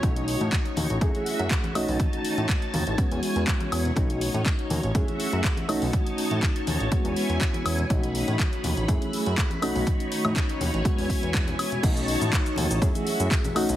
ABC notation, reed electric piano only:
X:1
M:4/4
L:1/8
Q:"Swing 16ths" 1/4=122
K:Bmix
V:1 name="Reed electric piano"
[A,CDF]4 [A,CEG]3 [A,CDF]- | [A,CDF]4 [G,B,CF]4 | [A,CDF]4 [A,CEG]3 [A,CDF]- | [A,CDF]4 [G,B,CF]4 |
[A,CDF]4 [A,CEG]3 [A,CDF]- | [A,CDF]4 [G,B,CF]4 | [A,CDF]4 [A,CEG]3 [A,CDF] |]